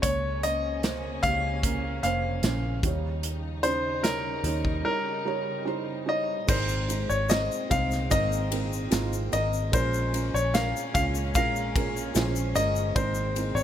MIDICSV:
0, 0, Header, 1, 6, 480
1, 0, Start_track
1, 0, Key_signature, -4, "major"
1, 0, Tempo, 801068
1, 18, Time_signature, 4, 2, 24, 8
1, 2418, Tempo, 815217
1, 4818, Tempo, 806452
1, 8105, End_track
2, 0, Start_track
2, 0, Title_t, "Grand piano"
2, 0, Program_c, 0, 0
2, 13, Note_on_c, 0, 73, 81
2, 239, Note_off_c, 0, 73, 0
2, 260, Note_on_c, 0, 75, 90
2, 735, Note_on_c, 0, 77, 114
2, 755, Note_off_c, 0, 75, 0
2, 1192, Note_off_c, 0, 77, 0
2, 1217, Note_on_c, 0, 77, 88
2, 1672, Note_off_c, 0, 77, 0
2, 2175, Note_on_c, 0, 72, 104
2, 2401, Note_off_c, 0, 72, 0
2, 2417, Note_on_c, 0, 70, 86
2, 2872, Note_off_c, 0, 70, 0
2, 2897, Note_on_c, 0, 70, 84
2, 3354, Note_off_c, 0, 70, 0
2, 3626, Note_on_c, 0, 75, 84
2, 3864, Note_on_c, 0, 72, 76
2, 3871, Note_off_c, 0, 75, 0
2, 4200, Note_off_c, 0, 72, 0
2, 4219, Note_on_c, 0, 73, 70
2, 4338, Note_on_c, 0, 75, 82
2, 4344, Note_off_c, 0, 73, 0
2, 4580, Note_on_c, 0, 77, 89
2, 4587, Note_off_c, 0, 75, 0
2, 4817, Note_on_c, 0, 75, 92
2, 4826, Note_off_c, 0, 77, 0
2, 5534, Note_off_c, 0, 75, 0
2, 5543, Note_on_c, 0, 75, 86
2, 5785, Note_on_c, 0, 72, 82
2, 5790, Note_off_c, 0, 75, 0
2, 6147, Note_on_c, 0, 73, 81
2, 6156, Note_off_c, 0, 72, 0
2, 6264, Note_on_c, 0, 77, 86
2, 6269, Note_off_c, 0, 73, 0
2, 6495, Note_off_c, 0, 77, 0
2, 6504, Note_on_c, 0, 77, 100
2, 6558, Note_off_c, 0, 77, 0
2, 6747, Note_on_c, 0, 77, 99
2, 7439, Note_off_c, 0, 77, 0
2, 7463, Note_on_c, 0, 75, 96
2, 7684, Note_off_c, 0, 75, 0
2, 7701, Note_on_c, 0, 72, 83
2, 8055, Note_on_c, 0, 73, 81
2, 8069, Note_off_c, 0, 72, 0
2, 8084, Note_off_c, 0, 73, 0
2, 8105, End_track
3, 0, Start_track
3, 0, Title_t, "Felt piano"
3, 0, Program_c, 1, 0
3, 0, Control_c, 1, 64, 127
3, 15, Note_on_c, 1, 58, 84
3, 19, Note_on_c, 1, 49, 60
3, 19, Note_on_c, 1, 61, 72
3, 25, Note_on_c, 1, 73, 101
3, 27, Control_c, 1, 64, 0
3, 148, Control_c, 1, 64, 127
3, 245, Note_off_c, 1, 58, 0
3, 247, Note_off_c, 1, 61, 0
3, 250, Note_off_c, 1, 73, 0
3, 256, Note_on_c, 1, 58, 64
3, 261, Note_on_c, 1, 61, 65
3, 268, Note_on_c, 1, 72, 74
3, 486, Note_off_c, 1, 58, 0
3, 488, Note_off_c, 1, 61, 0
3, 492, Note_off_c, 1, 72, 0
3, 499, Note_on_c, 1, 58, 70
3, 504, Note_on_c, 1, 61, 67
3, 511, Note_on_c, 1, 72, 84
3, 716, Note_off_c, 1, 49, 0
3, 728, Note_off_c, 1, 58, 0
3, 730, Note_off_c, 1, 61, 0
3, 733, Note_off_c, 1, 72, 0
3, 740, Note_on_c, 1, 58, 67
3, 744, Note_on_c, 1, 61, 65
3, 749, Note_on_c, 1, 67, 80
3, 967, Note_off_c, 1, 58, 0
3, 969, Note_off_c, 1, 61, 0
3, 972, Note_off_c, 1, 67, 0
3, 979, Note_on_c, 1, 58, 75
3, 984, Note_on_c, 1, 61, 68
3, 990, Note_on_c, 1, 70, 76
3, 1206, Note_off_c, 1, 58, 0
3, 1209, Note_off_c, 1, 61, 0
3, 1212, Note_off_c, 1, 70, 0
3, 1222, Note_on_c, 1, 58, 89
3, 1226, Note_on_c, 1, 61, 82
3, 1234, Note_on_c, 1, 72, 107
3, 1447, Note_off_c, 1, 58, 0
3, 1449, Note_off_c, 1, 61, 0
3, 1453, Note_off_c, 1, 72, 0
3, 1457, Note_on_c, 1, 58, 86
3, 1464, Note_on_c, 1, 61, 88
3, 1470, Note_on_c, 1, 72, 97
3, 1684, Note_off_c, 1, 58, 0
3, 1688, Note_off_c, 1, 61, 0
3, 1691, Note_off_c, 1, 72, 0
3, 1701, Note_on_c, 1, 55, 72
3, 1703, Control_c, 1, 64, 0
3, 1706, Note_on_c, 1, 63, 66
3, 1707, Note_on_c, 1, 51, 62
3, 1712, Note_on_c, 1, 73, 85
3, 1812, Control_c, 1, 64, 127
3, 2155, Note_off_c, 1, 55, 0
3, 2158, Note_off_c, 1, 63, 0
3, 2161, Note_off_c, 1, 73, 0
3, 2176, Note_on_c, 1, 55, 68
3, 2182, Note_on_c, 1, 63, 63
3, 2186, Note_on_c, 1, 61, 76
3, 2400, Note_off_c, 1, 51, 0
3, 2403, Note_off_c, 1, 55, 0
3, 2409, Note_off_c, 1, 63, 0
3, 2411, Note_off_c, 1, 61, 0
3, 2412, Note_on_c, 1, 55, 76
3, 2420, Note_on_c, 1, 63, 70
3, 2425, Note_on_c, 1, 73, 82
3, 2642, Note_off_c, 1, 55, 0
3, 2646, Note_off_c, 1, 63, 0
3, 2648, Note_off_c, 1, 73, 0
3, 2656, Note_on_c, 1, 55, 67
3, 2661, Note_on_c, 1, 63, 71
3, 2669, Note_on_c, 1, 73, 80
3, 2883, Note_off_c, 1, 55, 0
3, 2886, Note_off_c, 1, 63, 0
3, 2890, Note_off_c, 1, 73, 0
3, 2892, Note_on_c, 1, 55, 74
3, 2898, Note_on_c, 1, 63, 65
3, 2902, Note_on_c, 1, 73, 83
3, 3122, Note_off_c, 1, 55, 0
3, 3125, Note_off_c, 1, 63, 0
3, 3127, Note_off_c, 1, 73, 0
3, 3135, Note_on_c, 1, 55, 100
3, 3139, Note_on_c, 1, 63, 91
3, 3147, Note_on_c, 1, 73, 105
3, 3362, Note_off_c, 1, 55, 0
3, 3367, Note_off_c, 1, 63, 0
3, 3370, Note_on_c, 1, 55, 100
3, 3371, Note_off_c, 1, 73, 0
3, 3378, Note_on_c, 1, 63, 85
3, 3383, Note_on_c, 1, 72, 106
3, 3601, Note_off_c, 1, 55, 0
3, 3607, Note_off_c, 1, 63, 0
3, 3610, Note_off_c, 1, 72, 0
3, 3610, Note_on_c, 1, 55, 88
3, 3616, Note_on_c, 1, 63, 72
3, 3623, Note_on_c, 1, 73, 92
3, 3844, Note_off_c, 1, 55, 0
3, 3847, Note_off_c, 1, 63, 0
3, 3851, Note_off_c, 1, 73, 0
3, 3853, Note_on_c, 1, 56, 88
3, 3858, Note_on_c, 1, 44, 59
3, 3858, Note_on_c, 1, 60, 81
3, 3860, Note_on_c, 1, 63, 77
3, 3863, Note_on_c, 1, 70, 97
3, 3868, Control_c, 1, 64, 0
3, 3964, Control_c, 1, 64, 127
3, 4086, Note_off_c, 1, 56, 0
3, 4088, Note_off_c, 1, 60, 0
3, 4089, Note_off_c, 1, 63, 0
3, 4091, Note_off_c, 1, 70, 0
3, 4095, Note_on_c, 1, 56, 68
3, 4100, Note_on_c, 1, 60, 64
3, 4103, Note_on_c, 1, 63, 60
3, 4109, Note_on_c, 1, 72, 69
3, 4327, Note_off_c, 1, 56, 0
3, 4329, Note_off_c, 1, 60, 0
3, 4331, Note_off_c, 1, 63, 0
3, 4334, Note_off_c, 1, 72, 0
3, 4335, Note_on_c, 1, 56, 74
3, 4342, Note_on_c, 1, 60, 70
3, 4344, Note_on_c, 1, 63, 67
3, 4349, Note_on_c, 1, 72, 84
3, 4556, Note_off_c, 1, 44, 0
3, 4565, Note_off_c, 1, 56, 0
3, 4569, Note_off_c, 1, 60, 0
3, 4570, Note_off_c, 1, 63, 0
3, 4573, Note_off_c, 1, 72, 0
3, 4574, Note_on_c, 1, 56, 74
3, 4579, Note_on_c, 1, 60, 66
3, 4581, Note_on_c, 1, 63, 68
3, 4587, Note_on_c, 1, 72, 80
3, 4804, Note_off_c, 1, 56, 0
3, 4806, Note_off_c, 1, 60, 0
3, 4807, Note_off_c, 1, 63, 0
3, 4810, Note_off_c, 1, 72, 0
3, 4813, Note_on_c, 1, 56, 89
3, 4815, Note_on_c, 1, 60, 86
3, 4821, Note_on_c, 1, 63, 83
3, 4823, Note_on_c, 1, 70, 97
3, 5044, Note_off_c, 1, 56, 0
3, 5045, Note_off_c, 1, 60, 0
3, 5048, Note_off_c, 1, 63, 0
3, 5049, Note_off_c, 1, 70, 0
3, 5054, Note_on_c, 1, 56, 79
3, 5058, Note_on_c, 1, 60, 65
3, 5061, Note_on_c, 1, 63, 68
3, 5066, Note_on_c, 1, 70, 79
3, 5283, Note_off_c, 1, 56, 0
3, 5287, Note_off_c, 1, 60, 0
3, 5288, Note_off_c, 1, 63, 0
3, 5291, Note_off_c, 1, 70, 0
3, 5292, Note_on_c, 1, 56, 93
3, 5297, Note_on_c, 1, 60, 84
3, 5300, Note_on_c, 1, 63, 81
3, 5304, Note_on_c, 1, 65, 108
3, 5524, Note_off_c, 1, 56, 0
3, 5527, Note_off_c, 1, 60, 0
3, 5529, Note_off_c, 1, 63, 0
3, 5530, Note_off_c, 1, 65, 0
3, 5534, Note_on_c, 1, 56, 70
3, 5537, Note_on_c, 1, 60, 66
3, 5540, Note_on_c, 1, 63, 66
3, 5546, Note_on_c, 1, 70, 82
3, 5766, Note_off_c, 1, 56, 0
3, 5768, Note_off_c, 1, 60, 0
3, 5769, Note_off_c, 1, 63, 0
3, 5772, Note_off_c, 1, 70, 0
3, 5775, Note_on_c, 1, 56, 92
3, 5781, Note_on_c, 1, 61, 81
3, 5784, Note_on_c, 1, 46, 58
3, 5785, Note_on_c, 1, 65, 86
3, 5788, Note_on_c, 1, 70, 101
3, 5790, Control_c, 1, 64, 0
3, 5902, Control_c, 1, 64, 127
3, 6008, Note_off_c, 1, 56, 0
3, 6010, Note_off_c, 1, 61, 0
3, 6012, Note_off_c, 1, 65, 0
3, 6014, Note_off_c, 1, 70, 0
3, 6017, Note_on_c, 1, 56, 70
3, 6023, Note_on_c, 1, 61, 59
3, 6025, Note_on_c, 1, 65, 65
3, 6030, Note_on_c, 1, 70, 76
3, 6249, Note_off_c, 1, 56, 0
3, 6252, Note_off_c, 1, 61, 0
3, 6253, Note_off_c, 1, 65, 0
3, 6255, Note_off_c, 1, 70, 0
3, 6261, Note_on_c, 1, 56, 72
3, 6265, Note_on_c, 1, 61, 70
3, 6270, Note_on_c, 1, 65, 70
3, 6274, Note_on_c, 1, 70, 92
3, 6481, Note_off_c, 1, 46, 0
3, 6491, Note_off_c, 1, 56, 0
3, 6493, Note_off_c, 1, 61, 0
3, 6495, Note_off_c, 1, 65, 0
3, 6497, Note_off_c, 1, 70, 0
3, 6504, Note_on_c, 1, 56, 74
3, 6507, Note_on_c, 1, 61, 73
3, 6511, Note_on_c, 1, 65, 74
3, 6514, Note_on_c, 1, 73, 77
3, 6732, Note_off_c, 1, 56, 0
3, 6734, Note_off_c, 1, 61, 0
3, 6736, Note_off_c, 1, 65, 0
3, 6737, Note_off_c, 1, 73, 0
3, 6747, Note_on_c, 1, 56, 89
3, 6751, Note_on_c, 1, 61, 89
3, 6755, Note_on_c, 1, 65, 90
3, 6757, Note_on_c, 1, 70, 107
3, 6973, Note_off_c, 1, 56, 0
3, 6975, Note_off_c, 1, 61, 0
3, 6977, Note_off_c, 1, 65, 0
3, 6978, Note_off_c, 1, 70, 0
3, 6984, Note_on_c, 1, 56, 78
3, 6988, Note_on_c, 1, 61, 74
3, 6990, Note_on_c, 1, 65, 72
3, 6995, Note_on_c, 1, 70, 85
3, 7211, Note_off_c, 1, 56, 0
3, 7213, Note_off_c, 1, 61, 0
3, 7214, Note_off_c, 1, 65, 0
3, 7216, Note_off_c, 1, 70, 0
3, 7220, Note_on_c, 1, 56, 102
3, 7224, Note_on_c, 1, 61, 93
3, 7228, Note_on_c, 1, 65, 90
3, 7232, Note_on_c, 1, 72, 107
3, 7448, Note_off_c, 1, 56, 0
3, 7451, Note_off_c, 1, 61, 0
3, 7452, Note_off_c, 1, 65, 0
3, 7454, Note_off_c, 1, 72, 0
3, 7460, Note_on_c, 1, 56, 75
3, 7464, Note_on_c, 1, 61, 66
3, 7469, Note_on_c, 1, 65, 74
3, 7473, Note_on_c, 1, 70, 82
3, 7687, Note_off_c, 1, 56, 0
3, 7689, Note_off_c, 1, 61, 0
3, 7692, Note_off_c, 1, 65, 0
3, 7693, Note_off_c, 1, 70, 0
3, 7701, Note_on_c, 1, 56, 99
3, 7705, Note_on_c, 1, 60, 83
3, 7707, Note_on_c, 1, 44, 63
3, 7708, Control_c, 1, 64, 0
3, 7708, Note_on_c, 1, 63, 92
3, 7714, Note_on_c, 1, 70, 101
3, 7826, Control_c, 1, 64, 127
3, 7927, Note_off_c, 1, 56, 0
3, 7929, Note_off_c, 1, 60, 0
3, 7930, Note_off_c, 1, 63, 0
3, 7933, Note_off_c, 1, 70, 0
3, 7942, Note_on_c, 1, 56, 77
3, 7947, Note_on_c, 1, 60, 69
3, 7949, Note_on_c, 1, 63, 68
3, 7954, Note_on_c, 1, 70, 77
3, 8105, Note_off_c, 1, 44, 0
3, 8105, Note_off_c, 1, 56, 0
3, 8105, Note_off_c, 1, 60, 0
3, 8105, Note_off_c, 1, 63, 0
3, 8105, Note_off_c, 1, 70, 0
3, 8105, End_track
4, 0, Start_track
4, 0, Title_t, "String section"
4, 0, Program_c, 2, 48
4, 23, Note_on_c, 2, 58, 61
4, 25, Note_on_c, 2, 61, 78
4, 26, Note_on_c, 2, 49, 69
4, 1683, Note_off_c, 2, 58, 0
4, 1684, Note_off_c, 2, 49, 0
4, 1684, Note_off_c, 2, 61, 0
4, 1696, Note_on_c, 2, 63, 72
4, 1697, Note_on_c, 2, 55, 64
4, 1698, Note_on_c, 2, 49, 68
4, 3839, Note_off_c, 2, 55, 0
4, 3839, Note_off_c, 2, 63, 0
4, 3840, Note_off_c, 2, 49, 0
4, 3858, Note_on_c, 2, 60, 79
4, 3861, Note_on_c, 2, 46, 75
4, 3861, Note_on_c, 2, 56, 62
4, 5761, Note_off_c, 2, 60, 0
4, 5762, Note_off_c, 2, 46, 0
4, 5785, Note_on_c, 2, 46, 75
4, 5787, Note_on_c, 2, 61, 85
4, 7682, Note_off_c, 2, 46, 0
4, 7684, Note_off_c, 2, 61, 0
4, 7705, Note_on_c, 2, 46, 76
4, 7705, Note_on_c, 2, 60, 87
4, 8105, Note_off_c, 2, 46, 0
4, 8105, Note_off_c, 2, 56, 0
4, 8105, Note_off_c, 2, 60, 0
4, 8105, End_track
5, 0, Start_track
5, 0, Title_t, "Fingered electric bass"
5, 0, Program_c, 3, 33
5, 17, Note_on_c, 3, 37, 108
5, 715, Note_off_c, 3, 37, 0
5, 739, Note_on_c, 3, 37, 93
5, 1194, Note_off_c, 3, 37, 0
5, 1217, Note_on_c, 3, 29, 82
5, 1440, Note_off_c, 3, 29, 0
5, 1454, Note_on_c, 3, 34, 87
5, 1678, Note_off_c, 3, 34, 0
5, 1698, Note_on_c, 3, 39, 83
5, 2634, Note_off_c, 3, 39, 0
5, 2654, Note_on_c, 3, 39, 91
5, 2878, Note_off_c, 3, 39, 0
5, 3861, Note_on_c, 3, 32, 98
5, 4198, Note_off_c, 3, 32, 0
5, 4220, Note_on_c, 3, 32, 84
5, 4444, Note_off_c, 3, 32, 0
5, 4582, Note_on_c, 3, 36, 78
5, 4819, Note_on_c, 3, 32, 101
5, 4828, Note_off_c, 3, 36, 0
5, 5275, Note_off_c, 3, 32, 0
5, 5300, Note_on_c, 3, 32, 86
5, 5524, Note_off_c, 3, 32, 0
5, 5544, Note_on_c, 3, 32, 83
5, 5767, Note_off_c, 3, 32, 0
5, 5783, Note_on_c, 3, 34, 106
5, 6120, Note_off_c, 3, 34, 0
5, 6145, Note_on_c, 3, 34, 91
5, 6368, Note_off_c, 3, 34, 0
5, 6507, Note_on_c, 3, 37, 82
5, 6749, Note_off_c, 3, 37, 0
5, 6749, Note_on_c, 3, 34, 107
5, 7202, Note_off_c, 3, 34, 0
5, 7225, Note_on_c, 3, 34, 100
5, 7446, Note_off_c, 3, 34, 0
5, 7462, Note_on_c, 3, 31, 89
5, 7683, Note_off_c, 3, 31, 0
5, 7703, Note_on_c, 3, 32, 102
5, 8035, Note_off_c, 3, 32, 0
5, 8054, Note_on_c, 3, 32, 108
5, 8105, Note_off_c, 3, 32, 0
5, 8105, End_track
6, 0, Start_track
6, 0, Title_t, "Drums"
6, 18, Note_on_c, 9, 36, 100
6, 18, Note_on_c, 9, 42, 87
6, 78, Note_off_c, 9, 36, 0
6, 78, Note_off_c, 9, 42, 0
6, 260, Note_on_c, 9, 42, 67
6, 320, Note_off_c, 9, 42, 0
6, 499, Note_on_c, 9, 42, 68
6, 503, Note_on_c, 9, 38, 101
6, 559, Note_off_c, 9, 42, 0
6, 563, Note_off_c, 9, 38, 0
6, 739, Note_on_c, 9, 42, 70
6, 740, Note_on_c, 9, 36, 83
6, 799, Note_off_c, 9, 42, 0
6, 800, Note_off_c, 9, 36, 0
6, 979, Note_on_c, 9, 36, 86
6, 981, Note_on_c, 9, 42, 86
6, 1039, Note_off_c, 9, 36, 0
6, 1040, Note_off_c, 9, 42, 0
6, 1219, Note_on_c, 9, 42, 76
6, 1279, Note_off_c, 9, 42, 0
6, 1456, Note_on_c, 9, 42, 72
6, 1461, Note_on_c, 9, 38, 103
6, 1516, Note_off_c, 9, 42, 0
6, 1521, Note_off_c, 9, 38, 0
6, 1697, Note_on_c, 9, 36, 89
6, 1699, Note_on_c, 9, 42, 67
6, 1757, Note_off_c, 9, 36, 0
6, 1759, Note_off_c, 9, 42, 0
6, 1937, Note_on_c, 9, 42, 91
6, 1997, Note_off_c, 9, 42, 0
6, 2177, Note_on_c, 9, 42, 65
6, 2237, Note_off_c, 9, 42, 0
6, 2420, Note_on_c, 9, 42, 74
6, 2423, Note_on_c, 9, 38, 98
6, 2479, Note_off_c, 9, 42, 0
6, 2482, Note_off_c, 9, 38, 0
6, 2657, Note_on_c, 9, 42, 76
6, 2716, Note_off_c, 9, 42, 0
6, 2778, Note_on_c, 9, 36, 71
6, 2837, Note_off_c, 9, 36, 0
6, 3860, Note_on_c, 9, 49, 92
6, 3860, Note_on_c, 9, 82, 53
6, 3861, Note_on_c, 9, 36, 108
6, 3919, Note_off_c, 9, 36, 0
6, 3919, Note_off_c, 9, 49, 0
6, 3919, Note_off_c, 9, 82, 0
6, 3978, Note_on_c, 9, 82, 46
6, 4037, Note_off_c, 9, 82, 0
6, 4103, Note_on_c, 9, 82, 46
6, 4104, Note_on_c, 9, 51, 55
6, 4162, Note_off_c, 9, 51, 0
6, 4162, Note_off_c, 9, 82, 0
6, 4223, Note_on_c, 9, 82, 52
6, 4282, Note_off_c, 9, 82, 0
6, 4336, Note_on_c, 9, 82, 61
6, 4345, Note_on_c, 9, 51, 63
6, 4348, Note_on_c, 9, 38, 112
6, 4395, Note_off_c, 9, 82, 0
6, 4404, Note_off_c, 9, 51, 0
6, 4407, Note_off_c, 9, 38, 0
6, 4469, Note_on_c, 9, 82, 43
6, 4528, Note_off_c, 9, 82, 0
6, 4582, Note_on_c, 9, 36, 85
6, 4583, Note_on_c, 9, 51, 59
6, 4584, Note_on_c, 9, 82, 50
6, 4641, Note_off_c, 9, 36, 0
6, 4641, Note_off_c, 9, 51, 0
6, 4642, Note_off_c, 9, 82, 0
6, 4701, Note_on_c, 9, 82, 47
6, 4707, Note_on_c, 9, 38, 28
6, 4760, Note_off_c, 9, 82, 0
6, 4766, Note_off_c, 9, 38, 0
6, 4818, Note_on_c, 9, 82, 64
6, 4820, Note_on_c, 9, 36, 90
6, 4822, Note_on_c, 9, 51, 73
6, 4878, Note_off_c, 9, 82, 0
6, 4879, Note_off_c, 9, 36, 0
6, 4881, Note_off_c, 9, 51, 0
6, 4944, Note_on_c, 9, 82, 41
6, 5004, Note_off_c, 9, 82, 0
6, 5059, Note_on_c, 9, 51, 69
6, 5119, Note_off_c, 9, 51, 0
6, 5185, Note_on_c, 9, 82, 51
6, 5244, Note_off_c, 9, 82, 0
6, 5296, Note_on_c, 9, 51, 65
6, 5300, Note_on_c, 9, 82, 72
6, 5302, Note_on_c, 9, 38, 105
6, 5356, Note_off_c, 9, 51, 0
6, 5360, Note_off_c, 9, 82, 0
6, 5361, Note_off_c, 9, 38, 0
6, 5425, Note_on_c, 9, 82, 49
6, 5485, Note_off_c, 9, 82, 0
6, 5542, Note_on_c, 9, 51, 60
6, 5542, Note_on_c, 9, 82, 55
6, 5601, Note_off_c, 9, 82, 0
6, 5602, Note_off_c, 9, 51, 0
6, 5664, Note_on_c, 9, 82, 43
6, 5723, Note_off_c, 9, 82, 0
6, 5782, Note_on_c, 9, 51, 71
6, 5783, Note_on_c, 9, 36, 107
6, 5791, Note_on_c, 9, 82, 50
6, 5842, Note_off_c, 9, 36, 0
6, 5842, Note_off_c, 9, 51, 0
6, 5850, Note_off_c, 9, 82, 0
6, 5904, Note_on_c, 9, 82, 47
6, 5964, Note_off_c, 9, 82, 0
6, 6025, Note_on_c, 9, 51, 61
6, 6032, Note_on_c, 9, 82, 47
6, 6085, Note_off_c, 9, 51, 0
6, 6092, Note_off_c, 9, 82, 0
6, 6157, Note_on_c, 9, 82, 50
6, 6216, Note_off_c, 9, 82, 0
6, 6266, Note_on_c, 9, 51, 60
6, 6267, Note_on_c, 9, 82, 59
6, 6270, Note_on_c, 9, 38, 108
6, 6326, Note_off_c, 9, 51, 0
6, 6326, Note_off_c, 9, 82, 0
6, 6330, Note_off_c, 9, 38, 0
6, 6398, Note_on_c, 9, 82, 43
6, 6457, Note_off_c, 9, 82, 0
6, 6507, Note_on_c, 9, 36, 90
6, 6508, Note_on_c, 9, 51, 62
6, 6512, Note_on_c, 9, 82, 48
6, 6566, Note_off_c, 9, 36, 0
6, 6567, Note_off_c, 9, 51, 0
6, 6571, Note_off_c, 9, 82, 0
6, 6626, Note_on_c, 9, 82, 50
6, 6686, Note_off_c, 9, 82, 0
6, 6744, Note_on_c, 9, 82, 67
6, 6747, Note_on_c, 9, 36, 95
6, 6749, Note_on_c, 9, 51, 72
6, 6803, Note_off_c, 9, 82, 0
6, 6806, Note_off_c, 9, 36, 0
6, 6808, Note_off_c, 9, 51, 0
6, 6870, Note_on_c, 9, 82, 39
6, 6929, Note_off_c, 9, 82, 0
6, 6987, Note_on_c, 9, 36, 106
6, 6989, Note_on_c, 9, 51, 64
6, 7047, Note_off_c, 9, 36, 0
6, 7048, Note_off_c, 9, 51, 0
6, 7113, Note_on_c, 9, 82, 53
6, 7173, Note_off_c, 9, 82, 0
6, 7222, Note_on_c, 9, 82, 73
6, 7225, Note_on_c, 9, 51, 63
6, 7230, Note_on_c, 9, 38, 114
6, 7282, Note_off_c, 9, 82, 0
6, 7285, Note_off_c, 9, 51, 0
6, 7290, Note_off_c, 9, 38, 0
6, 7345, Note_on_c, 9, 82, 54
6, 7405, Note_off_c, 9, 82, 0
6, 7463, Note_on_c, 9, 82, 57
6, 7467, Note_on_c, 9, 51, 59
6, 7522, Note_off_c, 9, 82, 0
6, 7526, Note_off_c, 9, 51, 0
6, 7583, Note_on_c, 9, 82, 48
6, 7642, Note_off_c, 9, 82, 0
6, 7703, Note_on_c, 9, 36, 114
6, 7703, Note_on_c, 9, 51, 77
6, 7706, Note_on_c, 9, 82, 54
6, 7763, Note_off_c, 9, 36, 0
6, 7763, Note_off_c, 9, 51, 0
6, 7765, Note_off_c, 9, 82, 0
6, 7815, Note_on_c, 9, 82, 50
6, 7875, Note_off_c, 9, 82, 0
6, 7942, Note_on_c, 9, 82, 52
6, 7943, Note_on_c, 9, 51, 57
6, 8002, Note_off_c, 9, 51, 0
6, 8002, Note_off_c, 9, 82, 0
6, 8065, Note_on_c, 9, 82, 49
6, 8105, Note_off_c, 9, 82, 0
6, 8105, End_track
0, 0, End_of_file